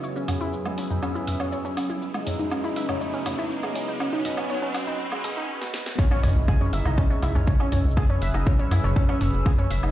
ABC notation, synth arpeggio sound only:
X:1
M:4/4
L:1/16
Q:1/4=121
K:C#m
V:1 name="Synth arpeggio sound"
c C C E z G, C D C E e c c C C E | z G, C D C E e c c C C E z G, C D | C D d c c C C D z G, G D z4 | [Cc] [Cc] [Cc] z [Gg] [Cc] [ee'] [Dd] [Cc] [Cc] [Ee] [Cc] [Cc] [Cc] [Cc] z |
[Gg] [Cc] [ee'] [Dd] [Cc] [Cc] [Ee] [Cc] [Cc] [Cc] [Cc] z [Gg] [Cc] [ee'] [Dd] |]